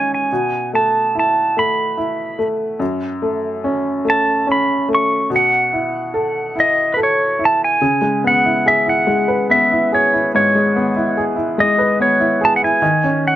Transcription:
Already playing: G#2 C#4 D#4 G#5
0.14 G#5
0.32 B2
0.73 A3 A5
1.15 E4
1.19 A5
1.57 A3 B5
1.97 E4
2.39 A3
2.79 F#2
3.22 A3
3.64 C#4
4.05 A3
4.10 A5
4.47 C#4
4.52 B5
4.89 A3
4.95 C#6
5.30 B2
5.36 F#5
5.73 E4
6.14 A4
6.56 E4
6.60 D#5
6.94 A4 B4
7.03 C#5
7.39 E4
7.45 A5
7.64 G#5
7.81 C#3
8.02 G#3
8.24 B3 F#5
8.45 E4
8.66 G#4 E5
8.86 E4 F#5
9.07 G#3
9.28 B4
9.50 B3 E5
9.71 E4
9.92 G#4 C#5
10.13 E4
10.35 G#2 C#5
10.55 G#3
10.76 B3
10.96 E4
11.17 G#4
11.36 E4
11.58 G#3 D#5
11.78 B4
12.00 B3 C#5
12.20 E4
12.41 G#4 A5
12.56 F#5
12.62 E4 G#5
12.82 D#3
13.04 C#4
13.28 F#5

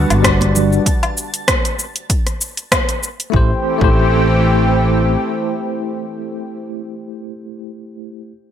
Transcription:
Already playing: D3 G3 B3 D4 F#4 B4 A5
0.10 G1, closed hi-hat, low woodblock, shaker
0.22 G3 D4 F#4 D5, kick, cross-stick, closed hi-hat, shaker
0.41 closed hi-hat, high conga
0.55 low conga, shaker
0.73 shaker
0.86 kick, closed hi-hat, shaker
1.03 closed hi-hat, low woodblock
1.17 shaker
1.34 closed hi-hat, shaker
1.48 kick, cross-stick, closed hi-hat, shaker
1.65 closed hi-hat, shaker
1.79 shaker
1.96 closed hi-hat, shaker
2.10 kick, closed hi-hat, shaker
2.27 cross-stick, closed hi-hat, shaker
2.41 shaker
2.57 closed hi-hat, shaker
2.72 kick, cross-stick, closed hi-hat, low woodblock, shaker
2.89 closed hi-hat, shaker
3.03 shaker
3.20 closed hi-hat, shaker
3.30 A1 E3 A3 C4 E4 G4, kick
3.34 G4 C5
3.78 A1 A3 E4, kick
3.82 G4 C5

